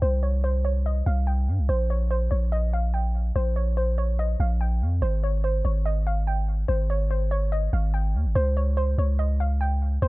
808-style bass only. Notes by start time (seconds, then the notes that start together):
0.02 C2
1.06 C2
1.48 G2
1.59 C2
1.69 A#1
2.31 A#1
3.36 A#1
4.40 A#1
4.81 F2
5.02 G#1
5.65 G#1
6.69 G#1
7.73 G#1
8.15 D#2
8.25 G#1
8.36 C#2
8.98 C#2
10.02 C#2